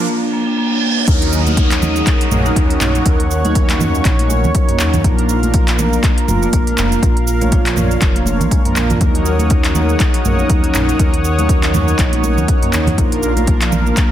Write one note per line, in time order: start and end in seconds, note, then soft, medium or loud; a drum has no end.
0.08 0.21 A#3 medium
0.08 reverse cymbal medium
0.22 0.32 D4 medium
0.33 0.46 A#3 medium
0.47 0.56 D4 medium
0.58 0.71 A#3 medium
0.72 0.81 D4 medium
0.83 0.96 A#3 medium
0.97 1.06 D4 medium
1.07 2.02 D#2 loud
1.07 1.43 F#3 medium
1.07 1.43 A#3 medium
1.07 1.43 C#4 medium
1.07 1.43 D#4 medium
1.07 1.21 D#4 medium
1.07 1.43 A#4 medium
1.07 5.01 C#5 medium
1.07 5.01 F#5 medium
1.07 3.04 D#6 loud
1.07 kick loud
1.07 closed hi-hat medium
1.07 downlifter medium
1.07 shaker soft
1.22 1.32 F#4 medium
1.22 closed hi-hat soft
1.33 1.46 A#4 medium
1.33 shaker medium
1.46 2.29 F#3 medium
1.46 2.29 A#3 medium
1.46 2.29 C#4 medium
1.46 2.29 D#4 medium
1.46 2.29 A#4 medium
1.46 closed hi-hat soft
1.46 high conga medium
1.46 shaker medium
1.57 1.71 D#4 medium
1.57 kick loud
1.57 closed hi-hat medium
1.57 shaker soft
1.71 clap loud
1.71 closed hi-hat soft
1.82 1.95 D#4 loud
1.82 high conga medium
1.82 low conga loud
1.82 shaker medium
1.96 2.06 G#4 medium
1.96 shaker medium
2.07 kick loud
2.07 clap medium
2.07 closed hi-hat medium
2.07 shaker soft
2.21 closed hi-hat soft
2.31 2.50 A#1 loud
2.31 3.03 F#3 medium
2.31 3.03 A#3 medium
2.31 3.03 C#4 medium
2.31 3.03 D#4 medium
2.31 3.03 A#4 medium
2.31 2.45 A#4 medium
2.31 mid tom medium
2.31 high conga loud
2.31 shaker loud
2.46 2.55 D#4 loud
2.46 shaker medium
2.56 2.75 D#2 medium
2.56 kick loud
2.56 closed hi-hat medium
2.56 shaker soft
2.70 2.80 C#4 medium
2.70 closed hi-hat soft
2.81 3.00 A#1 medium
2.81 2.94 D#4 loud
2.81 clap loud
2.81 mid tom medium
2.81 high conga medium
2.81 shaker loud
2.95 closed hi-hat soft
2.95 shaker soft
3.05 4.00 D#2 loud
3.05 3.19 F#3 medium
3.05 3.19 A#3 medium
3.05 3.19 C#4 medium
3.05 3.19 D#4 medium
3.05 3.19 A#4 loud
3.05 3.19 A#4 medium
3.05 5.02 C#6 loud
3.05 kick loud
3.05 closed hi-hat medium
3.05 shaker soft
3.20 closed hi-hat soft
3.31 3.44 A#4 medium
3.31 shaker medium
3.45 5.02 F#3 medium
3.45 5.02 A#3 medium
3.45 5.02 C#4 medium
3.45 5.02 D#4 medium
3.45 3.55 D#4 loud
3.45 5.02 C#5 medium
3.45 closed hi-hat soft
3.45 high conga loud
3.45 shaker medium
3.55 3.69 A#4 loud
3.55 kick loud
3.55 closed hi-hat medium
3.55 shaker soft
3.70 clap loud
3.70 closed hi-hat soft
3.80 mid tom medium
3.80 high conga medium
3.80 low conga loud
3.80 shaker loud
3.95 shaker medium
4.05 4.46 A#1 loud
4.05 kick loud
4.05 clap medium
4.05 closed hi-hat medium
4.05 shaker soft
4.19 4.25 D#4 medium
4.19 closed hi-hat soft
4.19 high conga medium
4.30 4.44 A#4 medium
4.30 high conga loud
4.30 shaker loud
4.44 4.52 D#2 medium
4.44 low conga medium
4.44 shaker medium
4.55 kick loud
4.55 closed hi-hat medium
4.55 shaker soft
4.69 4.75 A#3 loud
4.69 closed hi-hat soft
4.69 mid tom medium
4.79 4.98 D#2 medium
4.79 4.87 D#4 loud
4.79 clap loud
4.79 shaker loud
4.94 closed hi-hat soft
4.94 mid tom medium
4.94 low conga loud
4.94 shaker medium
5.04 5.99 A#1 loud
5.04 5.40 F3 medium
5.04 5.40 A#3 medium
5.04 5.17 A#3 medium
5.04 5.40 D4 medium
5.04 5.40 F4 medium
5.04 8.97 A#4 medium
5.04 5.40 A#4 medium
5.04 8.97 F5 medium
5.04 kick loud
5.04 closed hi-hat medium
5.04 shaker soft
5.18 5.29 D4 medium
5.18 closed hi-hat soft
5.29 5.43 F4 medium
5.29 shaker medium
5.43 6.26 F3 medium
5.43 6.26 A#3 medium
5.43 6.26 D4 medium
5.43 6.26 F4 medium
5.43 6.26 A#4 medium
5.43 closed hi-hat soft
5.43 high conga medium
5.43 shaker medium
5.54 5.67 A#3 medium
5.54 kick loud
5.54 closed hi-hat medium
5.54 shaker soft
5.68 clap loud
5.68 closed hi-hat soft
5.79 5.92 A#3 loud
5.79 high conga medium
5.79 low conga loud
5.79 shaker loud
5.93 6.03 D4 medium
5.93 shaker medium
6.03 6.16 A#3 medium
6.03 kick loud
6.03 clap medium
6.03 closed hi-hat medium
6.03 shaker soft
6.18 closed hi-hat soft
6.28 6.47 F1 loud
6.28 7.00 F3 medium
6.28 7.00 A#3 medium
6.28 7.00 D4 medium
6.28 7.00 F4 medium
6.28 6.42 F4 medium
6.28 7.00 A#4 medium
6.28 mid tom medium
6.28 high conga loud
6.28 shaker loud
6.42 6.52 A#3 loud
6.42 shaker medium
6.53 6.72 A#1 medium
6.53 6.67 A#3 medium
6.53 kick loud
6.53 closed hi-hat medium
6.53 shaker soft
6.67 6.77 G#3 medium
6.67 closed hi-hat soft
6.78 6.96 F1 loud
6.78 6.91 A#3 loud
6.78 clap loud
6.78 mid tom medium
6.78 high conga medium
6.78 shaker loud
6.92 closed hi-hat soft
6.92 shaker medium
7.02 7.97 A#1 loud
7.02 7.16 F3 medium
7.02 7.16 A#3 medium
7.02 7.16 D4 medium
7.02 7.16 F4 medium
7.02 7.15 F4 medium
7.02 7.16 A#4 loud
7.02 kick loud
7.02 closed hi-hat medium
7.02 shaker soft
7.17 closed hi-hat soft
7.27 7.41 F4 medium
7.27 shaker medium
7.41 8.63 F3 medium
7.41 8.63 A#3 medium
7.41 7.52 A#3 loud
7.41 8.63 D4 medium
7.41 8.63 F4 medium
7.41 8.63 C#5 medium
7.41 closed hi-hat soft
7.41 high conga loud
7.41 shaker medium
7.52 7.66 F4 loud
7.52 kick loud
7.52 closed hi-hat medium
7.52 shaker soft
7.66 clap medium
7.66 closed hi-hat soft
7.76 mid tom medium
7.76 high conga loud
7.76 low conga loud
7.76 shaker loud
7.91 shaker medium
8.02 8.43 F1 loud
8.02 kick loud
8.02 clap medium
8.02 closed hi-hat medium
8.02 shaker soft
8.15 8.22 A#3 medium
8.15 closed hi-hat soft
8.15 high conga medium
8.26 8.39 A#3 medium
8.26 high conga loud
8.26 shaker loud
8.41 8.48 A#1 medium
8.41 closed hi-hat soft
8.41 low conga loud
8.41 shaker medium
8.51 8.65 G#3 loud
8.51 kick loud
8.51 closed hi-hat medium
8.51 shaker soft
8.65 8.98 F3 loud
8.65 8.98 A#3 medium
8.65 8.75 A#3 loud
8.65 8.98 D4 medium
8.65 8.98 F4 medium
8.65 8.98 A#4 loud
8.65 closed hi-hat soft
8.65 mid tom medium
8.76 8.95 A#1 medium
8.76 8.90 A#3 medium
8.76 clap medium
8.76 shaker loud
8.90 closed hi-hat soft
8.90 mid tom medium
8.90 low conga loud
8.90 shaker medium
9.01 9.95 D#2 loud
9.01 9.36 F#3 medium
9.01 9.36 A#3 medium
9.01 9.36 C#4 medium
9.01 9.36 D#4 medium
9.01 9.14 D#4 medium
9.01 9.36 A#4 medium
9.01 12.94 C#5 medium
9.01 12.94 F#5 medium
9.01 12.94 D#6 loud
9.01 kick loud
9.01 closed hi-hat medium
9.01 shaker soft
9.15 9.25 F#4 medium
9.15 closed hi-hat soft
9.26 9.39 A#4 medium
9.26 shaker medium
9.39 10.22 F#3 medium
9.39 10.22 A#3 medium
9.39 10.22 C#4 medium
9.39 10.22 D#4 medium
9.39 10.22 A#4 medium
9.39 closed hi-hat soft
9.39 high conga medium
9.39 shaker medium
9.50 9.64 D#4 medium
9.50 kick loud
9.50 closed hi-hat medium
9.50 shaker soft
9.64 clap medium
9.64 closed hi-hat soft
9.75 9.88 D#4 loud
9.75 high conga medium
9.75 low conga loud
9.75 shaker loud
9.89 9.99 G#4 medium
9.89 shaker medium
10.00 kick loud
10.00 clap medium
10.00 closed hi-hat medium
10.00 shaker soft
10.14 closed hi-hat soft
10.25 10.44 A#1 loud
10.25 10.97 F#3 medium
10.25 10.97 A#3 medium
10.25 10.97 C#4 medium
10.25 10.97 D#4 medium
10.25 10.97 A#4 medium
10.25 10.38 A#4 medium
10.25 mid tom loud
10.25 high conga loud
10.25 shaker medium
10.39 10.49 D#4 loud
10.39 shaker medium
10.50 10.68 D#2 medium
10.50 10.63 D#4 medium
10.50 kick loud
10.50 closed hi-hat medium
10.50 shaker soft
10.64 10.74 C#4 medium
10.64 closed hi-hat soft
10.74 10.93 A#1 medium
10.74 10.87 D#4 loud
10.74 clap medium
10.74 mid tom medium
10.74 high conga medium
10.74 shaker loud
10.89 closed hi-hat soft
10.89 shaker medium
10.99 11.94 D#2 loud
10.99 11.13 F#3 medium
10.99 11.13 A#3 medium
10.99 11.13 C#4 medium
10.99 11.13 D#4 medium
10.99 11.13 A#4 loud
10.99 11.12 A#4 medium
10.99 kick loud
10.99 closed hi-hat medium
10.99 shaker soft
11.14 closed hi-hat soft
11.24 11.38 A#4 medium
11.24 shaker medium
11.38 12.95 F#3 medium
11.38 12.95 A#3 medium
11.38 12.95 C#4 medium
11.38 12.95 D#4 medium
11.38 11.49 D#4 loud
11.38 12.95 C#5 medium
11.38 closed hi-hat soft
11.38 high conga medium
11.38 shaker soft
11.49 11.63 A#4 loud
11.49 kick loud
11.49 closed hi-hat medium
11.49 shaker soft
11.63 clap medium
11.63 closed hi-hat soft
11.74 mid tom loud
11.74 high conga medium
11.74 low conga loud
11.74 shaker medium
11.88 shaker medium
11.99 12.39 A#1 loud
11.99 kick loud
11.99 clap medium
11.99 closed hi-hat medium
11.99 shaker soft
12.12 12.19 D#4 medium
12.12 closed hi-hat soft
12.12 high conga medium
12.24 12.37 A#4 medium
12.24 high conga loud
12.24 shaker medium
12.37 12.45 D#2 medium
12.37 low conga medium
12.37 shaker medium
12.48 kick loud
12.48 closed hi-hat medium
12.48 shaker soft
12.63 12.68 A#3 loud
12.63 closed hi-hat soft
12.63 mid tom medium
12.73 12.92 D#2 medium
12.73 12.81 D#4 loud
12.73 clap medium
12.73 shaker loud
12.87 closed hi-hat soft
12.87 mid tom loud
12.87 low conga loud
12.87 shaker medium
12.98 13.92 A#1 loud
12.98 13.34 F3 medium
12.98 13.33 A#3 medium
12.98 13.11 A#3 medium
12.98 13.33 D4 medium
12.98 13.34 F4 medium
12.98 13.33 A#4 medium
12.98 14.12 A#4 medium
12.98 14.12 F5 medium
12.98 kick loud
12.98 closed hi-hat medium
12.98 shaker soft
13.12 13.22 D4 medium
13.12 closed hi-hat soft
13.23 13.36 F4 medium
13.23 shaker medium
13.37 14.12 F3 medium
13.37 14.12 A#3 medium
13.37 14.12 D4 medium
13.37 14.12 F4 medium
13.37 14.12 A#4 medium
13.37 closed hi-hat soft
13.37 high conga medium
13.37 shaker soft
13.47 13.61 A#3 medium
13.47 kick loud
13.47 closed hi-hat medium
13.47 shaker soft
13.61 clap medium
13.61 closed hi-hat soft
13.72 13.85 A#3 loud
13.72 high conga medium
13.72 low conga loud
13.72 shaker medium
13.86 13.96 D4 medium
13.86 shaker soft
13.97 kick loud
13.97 clap medium
13.97 closed hi-hat medium
13.97 shaker soft